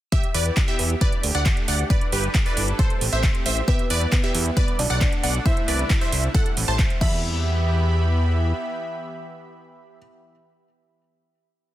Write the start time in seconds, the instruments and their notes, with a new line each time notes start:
0.12 supersaw synth B3 E4 G4, synth pluck G4 E5, kick, closed hi-hat
0.23 closed hi-hat
0.34 analog synth bass E2, synth pluck B4 D5, open hi-hat
0.46 closed hi-hat
0.57 kick, clap, closed hi-hat
0.68 synth pluck G4 E5, closed hi-hat
0.79 analog synth bass E2, open hi-hat
0.90 closed hi-hat
1.01 supersaw synth A3 D4 G4, synth pluck B4 D5, kick, closed hi-hat
1.12 closed hi-hat
1.23 analog synth bass D2, open hi-hat
1.35 analog synth bass D2, synth pluck D5 F#5, closed hi-hat
1.46 kick, clap, closed hi-hat
1.57 closed hi-hat
1.68 analog synth bass D2, synth pluck D5 F#5, open hi-hat
1.79 closed hi-hat
1.90 supersaw synth G3 D4 E4 A4 B4, synth pluck B4 D5, kick, closed hi-hat
2.01 closed hi-hat
2.12 analog synth bass G1, synth pluck G4 B4, open hi-hat
2.24 closed hi-hat
2.35 kick, clap, closed hi-hat
2.46 synth pluck B4 D5, closed hi-hat
2.57 analog synth bass G1, open hi-hat
2.68 closed hi-hat
2.79 supersaw synth A3 C4 G4, synth pluck A4 C5, kick, closed hi-hat
2.90 closed hi-hat
3.01 analog synth bass A1, open hi-hat
3.12 analog synth bass A1, synth pluck C5 E5, closed hi-hat
3.23 kick, clap, closed hi-hat
3.35 closed hi-hat
3.46 analog synth bass A1, synth pluck C5 E5, open hi-hat
3.68 supersaw synth G3 B3 E4, felt piano B3 B4, synth pluck G4 E5, kick, closed hi-hat
3.79 closed hi-hat
3.90 analog synth bass E2, synth pluck B4 D5, open hi-hat
4.01 closed hi-hat
4.12 felt piano B3 B4, kick, clap, closed hi-hat
4.24 synth pluck G4 E5, closed hi-hat
4.35 analog synth bass E2, open hi-hat
4.46 closed hi-hat
4.57 supersaw synth A3 D4, synth pluck B4 D5, kick, closed hi-hat
4.68 closed hi-hat
4.79 analog synth bass B1, felt piano D4 D5, open hi-hat
4.90 analog synth bass B1, synth pluck D5 F#5, closed hi-hat
5.01 kick, clap, closed hi-hat
5.12 closed hi-hat
5.23 analog synth bass B1, synth pluck D5 F#5, open hi-hat
5.35 closed hi-hat
5.46 supersaw synth C3 G3 E4, felt piano E4 E5, synth pluck C5 E5, kick, closed hi-hat
5.57 closed hi-hat
5.68 analog synth bass C2, synth pluck B4 D5, open hi-hat
5.79 closed hi-hat
5.90 kick, clap, closed hi-hat
6.01 synth pluck C5 E5, closed hi-hat
6.12 analog synth bass C2, open hi-hat
6.35 supersaw synth G3 C4, synth pluck A4 F#5, kick, closed hi-hat
6.46 closed hi-hat
6.57 analog synth bass A1, open hi-hat
6.68 analog synth bass A1, synth pluck C5 A5
6.79 kick, clap, closed hi-hat
6.90 closed hi-hat
7.01 analog synth bass E2, supersaw synth E3 B3 G4 E5 B5, felt piano E5, synth pluck B5, kick, crash